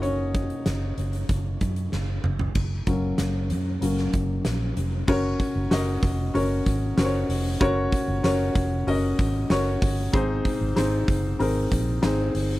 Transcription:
<<
  \new Staff \with { instrumentName = "Felt piano" } { \time 4/4 \key ges \lydian \tempo 4 = 95 <des' des''>2 r2 | r1 | <des' ges' bes' des''>4 <des' ges' bes' ees''>4 <des' ges' bes' des''>4 <des' ges' bes' c'' des''>4 | <des' ges' bes' des''>4 <des' ges' bes' des''>4 <des' ges' bes' ees''>4 <des' ges' bes' des''>4 |
<c' ees' aes' c''>4 <c' ees' aes' c''>4 <c' ees' aes' bes'>4 <c' ees' aes' c''>4 | }
  \new Staff \with { instrumentName = "Felt piano" } { \time 4/4 \key ges \lydian <bes des' ges'>2.~ <bes des' ges'>8 r8 | r8 <ges bes des'>4. <ges bes des'>8 r4. | r1 | r1 |
aes,4. r2 r8 | }
  \new Staff \with { instrumentName = "Fingered electric bass" } { \clef bass \time 4/4 \key ges \lydian ges,,4 ges,,8 ges,,8 ges,,8 ges,8 ges,,8 ges,,8 | ges,,8 ges,,8 ges,,8 ges,8 ges,,8 ges,,8 bes,,8 f,,8 | ges,,8 r16 ges,,16 ges,,8 f,,8 ges,,8 aes,,8 ges,,8 f,,8 | ges,,8 r16 ges,,16 ges,,8 f,,8 ges,,8 aes,,8 ges,,8 g,,8 |
aes,,8 r16 aes,,16 aes,,8 ges,,8 aes,,8 bes,,8 aes,,8 g,,8 | }
  \new DrumStaff \with { instrumentName = "Drums" } \drummode { \time 4/4 hh8 <hh bd>16 hh16 <hh sn>8 hh16 hh16 <hh bd>8 <hh bd>16 hh16 sn8 toml16 tomfh16 | <cymc bd>8 <hh bd>8 <hh sn>8 hh8 hh16 sn16 <hh bd>8 <hh sn>8 hh8 | <cymc bd>8 <hho hhp bd>8 <hho hhp sn>8 <hho hhp bd>8 <hho hhp>8 <hho hhp bd>8 <hho hhp sn>8 <hho hhp>8 | <hho hhp bd>8 <hho hhp bd>8 <hho hhp sn>8 <hho hhp bd>8 <hho hhp>8 <hho hhp bd>8 <hho hhp sn>8 <hho hhp bd>8 |
<hho hhp bd>8 <hho hhp bd>8 <hho hhp sn>8 <hho hhp bd>8 <hho hhp>8 <hho hhp bd>8 <hho hhp sn>8 <hho hhp>8 | }
>>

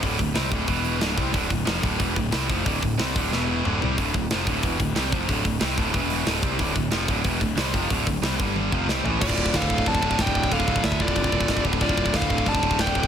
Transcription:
<<
  \new Staff \with { instrumentName = "Lead electric guitar" } { \time 4/4 \key d \minor \tempo 4 = 183 r1 | r1 | r1 | r1 |
r1 | r1 | r1 | d''4 f''4 a''4 g''4 |
f''4 e''8 d''2 r8 | d''4 f''4 a''4 g''4 | }
  \new Staff \with { instrumentName = "Lead electric guitar" } { \time 4/4 \key d \minor r1 | r1 | r1 | r1 |
r1 | r1 | r1 | f'4 a'4 d''4 d''4 |
a'4 a'8 f'2 r8 | f'4 a'4 d''4 d''4 | }
  \new Staff \with { instrumentName = "Distorted electric guitar" } { \clef bass \time 4/4 \key d \minor <d, a, d>8 <d, a,>8 <c g c'>8 <d, a, d>8 <e, b, e>4 <d, a, d>8 <c g c'>8 | <d, a, d>8 <d, a,>8 <f, c f>8 <d, a, d>8 <e, b, e>8 <d, a,>8 <c g c'>8 <f, c f>8 | <d, a, d>8 <d, a,>8 <c g c'>8 <d, a, d>8 <e, b, e>4 <d, a, d>8 <c g c'>8 | <d, a, d>8 <d, a,>8 <f, c f>8 <d, a, d>8 <e, b, e>8 <d, a,>8 <c g c'>8 <f, c f>8 |
<d, a, d>8 <d, a,>8 <c g c'>8 <d, a, d>8 <e, b, e>4 <d, a, d>8 <c g c'>8 | <d, a, d>8 <d, a,>8 <f, c f>8 <d, a, d>8 <e, b, e>8 <d, a,>8 <c g c'>8 <f, c f>8 | <d, a, d>8 <d, a,>8 <c g c'>8 <g, d g>4 <f, c f>8 <c g c'>8 <a, e a>8 | <d, a, d>1 |
<d, a, d>1 | <d, a, d>1 | }
  \new Staff \with { instrumentName = "Distorted electric guitar" } { \clef bass \time 4/4 \key d \minor <d, a, d>8 <d, a,>8 <c g c'>8 <d, a, d>8 <e, b, e>4 <d, a, d>8 <c g c'>8 | <d, a, d>8 <d, a,>8 <f, c f>8 <d, a, d>8 <e, b, e>8 <d, a,>8 <c g c'>8 <f, c f>8 | <d, a, d>8 <d, a,>8 <c g c'>8 <d, a, d>8 <e, b, e>4 <d, a, d>8 <c g c'>8 | <d, a, d>8 <d, a,>8 <f, c f>8 <d, a, d>8 <e, b, e>8 <d, a,>8 <c g c'>8 <f, c f>8 |
<d, a, d>8 <d, a,>8 <c g c'>8 <d, a, d>8 <e, b, e>4 <d, a, d>8 <c g c'>8 | <d, a, d>8 <d, a,>8 <f, c f>8 <d, a, d>8 <e, b, e>8 <d, a,>8 <c g c'>8 <f, c f>8 | <d, a, d>8 <d, a,>8 <c g c'>8 <g, d g>4 <f, c f>8 <c g c'>8 <a, e a>8 | <d, a, d>2~ <d, a, d>8 <d, a, d>8 <d, a, d>4 |
<d, a, d>2~ <d, a, d>8 <d, a, d>8 <d, a, d>4 | <d, a, d>2~ <d, a, d>8 <d, a, d>8 <d, a, d>4 | }
  \new Staff \with { instrumentName = "Picked electric bass" } { \clef bass \time 4/4 \key d \minor d,,8 d,,8 c,8 d,,8 e,,4 d,,8 c,8 | d,,8 d,,8 f,,8 d,,8 e,,8 d,,8 c,8 f,,8 | d,,8 d,,8 c,8 d,,8 e,,4 d,,8 c,8 | d,,8 d,,8 f,,8 d,,8 e,,8 d,,8 c,8 f,,8 |
d,,8 d,,8 c,8 d,,8 e,,4 d,,8 c,8 | d,,8 d,,8 f,,8 d,,8 e,,8 d,,8 c,8 f,,8 | d,,8 d,,8 c,8 g,,4 f,,8 c,8 a,,8 | d,,8 d,,8 d,8 d,,8 f,,8 d,,8 d,,8 d,,8 |
d,,8 d,,8 d,8 d,,8 f,,8 d,,8 d,,8 d,,8 | d,,8 d,,8 d,8 d,,8 f,,8 d,,8 d,,8 d,,8 | }
  \new DrumStaff \with { instrumentName = "Drums" } \drummode { \time 4/4 <hho bd>8 <hho bd>8 <hho sn>8 <hho bd>8 <hho bd>8 hho8 <hho sn>8 <hho bd>8 | <hho bd>8 <hho bd>8 <hho sn>8 <hho bd>8 <hho bd>8 <hho bd>8 <hho sn>8 <hho bd>8 | <hho bd>8 <hho bd>8 <hho sn>8 <hho bd>8 sn4 toml8 tomfh8 | <hho bd>8 bd8 <hho sn>8 <hho bd>8 <hho bd>8 <hho bd>8 <hho sn>8 <hho bd>8 |
<hho bd>8 <hho bd>8 <hho sn>8 <hho bd>8 <hho bd>8 hho8 <hho sn>8 <hho bd>8 | <hho bd>8 <hho bd>8 <hho sn>8 <hho bd>8 <hho bd>8 <hho bd>8 <hho sn>8 <hho bd>8 | <hho bd>8 <hho bd>8 <hho sn>8 <hho bd>8 tommh8 bd8 sn8 tomfh8 | <cymc bd>16 bd16 bd16 bd16 <cymc bd sn>16 bd16 bd16 bd16 <cymc bd>16 bd16 bd16 bd16 <cymc bd sn>16 bd16 bd16 bd16 |
<cymc bd>16 bd16 bd16 bd16 <cymc bd sn>16 bd16 bd16 bd16 <cymc bd>16 bd16 bd16 bd16 <cymc bd sn>16 bd16 bd16 bd16 | <cymc bd>16 bd16 bd16 bd16 <cymc bd sn>16 bd16 bd16 bd16 <cymc bd>16 bd16 bd16 bd16 <cymc bd sn>16 bd16 bd16 bd16 | }
>>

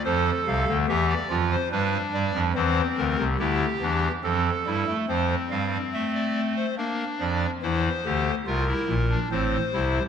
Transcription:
<<
  \new Staff \with { instrumentName = "Pipe organ" } { \time 3/4 \key f \mixolydian \tempo 4 = 71 << { c''8 f''8 e''16 d''8 c''16 b'8 d''8 | c''8 bes'8 g'4 a'4 | c''8 f''8 e''16 d''8 c''16 bes'8 d''8 | c''4 bes'4 c''4 | } \\ { a'4 g'8 f'8 d'4 | c'4 e'8 d'8 c'8 e'8 | c'2 d'4 | e'8 g'8 f'16 e'8 d'16 c'8 e'8 | } >> }
  \new Staff \with { instrumentName = "Pipe organ" } { \clef bass \time 3/4 \key f \mixolydian <f, f>8 <c, c>16 <d, d>16 <e, e>8 <f, f>8 <g, g>8 <g, g>16 <f, f>16 | <e, e>8 <d, d>16 <c, c>16 <d, d>8 <e, e>8 <f, f>8 <g, g>16 a16 | <f, f>8 <g, g>8 a4 bes8 <f, f>8 | <e, e>8 <d, d>8 <c, c>8 <bes,, bes,>8 <a,, a,>8 <c, c>8 | }
>>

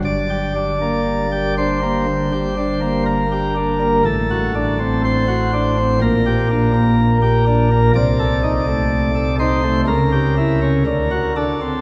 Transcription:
<<
  \new Staff \with { instrumentName = "Pipe organ" } { \time 4/4 \key g \minor \tempo 4 = 61 << { d''4. c''4. bes'4 | a'4 c''4 bes'2 | d''4. c''8 ais'4. a'8 | } \\ { g,16 g'16 d'16 bes8 g'16 d'16 bes16 d16 g'16 d'16 bes8 g'16 d'16 bes16 | a,16 fis'16 d'16 c'8 fis'16 d'16 c'16 bes,16 g'16 d'16 bes8 g'16 d'16 bes16 | c16 a'16 ees'16 a8 a'16 ees'16 a16 cis16 g'16 e'16 cis'16 d16 fis'16 d'16 c'16 | } >> }
  \new Staff \with { instrumentName = "Pipe organ" } { \clef bass \time 4/4 \key g \minor g,,1 | a,,2 bes,,2 | c,2 cis,4 d,16 r8. | }
>>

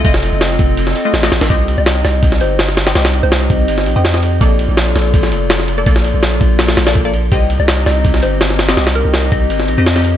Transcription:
<<
  \new Staff \with { instrumentName = "Synth pluck" } { \time 4/4 \key c \dorian \tempo 4 = 165 r1 | r8. ees''8 r16 ees''8 r8 c''8 r4 | r8. c''4. r4. r16 | r1 |
r1 | r8. ees''8 r16 ees''8 r8 c''8 r4 | r8 bes'4 ees''4 r4. | }
  \new Staff \with { instrumentName = "Synth stab" } { \time 4/4 \key c \dorian <a f' ees''>16 r2 r8 <a f' ees''>8 <a f' ees''>16 r8 | <c' g' ees''>2.~ <c' g' ees''>8. <c' g' ees''>16 | <c' g' ees''>16 r2 r8 <c' g' ees''>8 <c' g' ees''>16 r8 | <bes a' d''>2.~ <bes a' d''>8. <bes a' d''>16 |
<bes a' d''>16 r2 r8 <bes a' d''>8 <bes a' d''>16 r8 | <c' g' ees''>2.~ <c' g' ees''>8. <c' g' ees''>16 | <c' g' ees''>16 r2 r8 <c' g' ees''>8 <c' g' ees''>16 r8 | }
  \new Staff \with { instrumentName = "Ambient pad" } { \time 4/4 \key c \dorian <c' f' a' ees''>2~ <c' f' a' ees''>8 r4. | <c' ees' g' ees''>2~ <c' ees' g' ees''>8 r4. | <c' ees' g' ees''>2~ <c' ees' g' ees''>8 r4. | <bes f' a' d''>2~ <bes f' a' d''>8 r4. |
<bes f' a' d''>2~ <bes f' a' d''>8 r4. | <c' ees' g' ees''>2~ <c' ees' g' ees''>8 r4. | <c' ees' g' ees''>2~ <c' ees' g' ees''>8 r4. | }
  \new Staff \with { instrumentName = "808-style bass" } { \clef bass \time 4/4 \key c \dorian f,,8. f,,8. f,,4 r8 a,,8 a,,16 a,,16 | c,8. c,8. c,4 g,,4. | c,8. c,8. c,8 g,,8 bes,,16 f,4~ f,16 | bes,,8. bes,,8. bes,,4 f,,4. |
bes,,8. bes,,8. bes,,4 bes,,4. | c,8. c,8. c,4 g,,4. | c,8. c,8. c,8 g,,8 bes,,16 f,4~ f,16 | }
  \new DrumStaff \with { instrumentName = "Drums" } \drummode { \time 4/4 <bd cymr>16 sn16 cymr8 <cymr sn>8 <bd cymr>8 cymr16 sn16 cymr8 <cymr sn>16 <cymr sn>16 <cymr sn>16 <cymr sn>16 | <bd cymr>8 cymr8 <cymr sn>8 <cymr sn>8 <bd cymr>16 sn16 cymr8 <cymr sn>16 sn16 <cymr sn>16 <cymr sn>16 | <cymr sn>16 <cymr sn>16 cymr8 <cymr sn>8 <bd cymr>8 cymr16 sn16 cymr8 <cymr sn>16 sn16 cymr8 | <bd cymr>8 cymr8 <cymr sn>8 <cymr sn>8 <bd cymr>16 sn16 cymr8 <cymr sn>16 sn16 cymr8 |
<bd cymr>16 sn16 cymr8 <cymr sn>8 <bd cymr>8 <cymr sn>16 <cymr sn>16 <cymr sn>16 <cymr sn>16 <bd cymr>8 cymr8 | <bd cymr>8 cymr8 <cymr sn>8 <cymr sn>8 <bd cymr>16 sn16 cymr8 <cymr sn>16 sn16 <cymr sn>16 <cymr sn>16 | <cymr sn>16 <cymr sn>16 cymr8 <cymr sn>8 <bd cymr>8 cymr16 sn16 cymr8 <cymr sn>16 sn16 cymr8 | }
>>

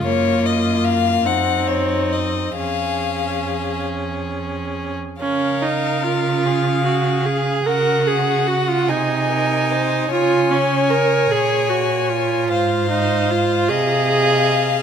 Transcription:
<<
  \new Staff \with { instrumentName = "Violin" } { \time 6/8 \key des \major \tempo 4. = 49 f'4. ees'4. | aes'2~ aes'8. r16 | f''2. | ges''4. aes''4. |
aes''2. | f''4. ees''4. | }
  \new Staff \with { instrumentName = "Violin" } { \time 6/8 \key des \major des''8 ees''8 f''8 ges''8 des''8 ees''8 | f''4. r4. | bes'4. aes'4. | ges'4. aes'8 bes'8 c''8 |
des''2. | c''4. f''4. | }
  \new Staff \with { instrumentName = "Viola" } { \time 6/8 \key des \major bes4. c'4. | des'2~ des'8. r16 | des'8 ees'8 f'4 ges'8 aes'8 | bes'8 aes'8 ges'16 f'16 ees'4. |
f'8 des'8 bes'8 aes'8 ges'8 f'8~ | f'8 ees'8 f'8 aes'4. | }
  \new Staff \with { instrumentName = "Cello" } { \clef bass \time 6/8 \key des \major ges,4. ges,4. | f,2~ f,8. r16 | des2. | des4. c4. |
des4. bes,4. | aes,4. c4. | }
>>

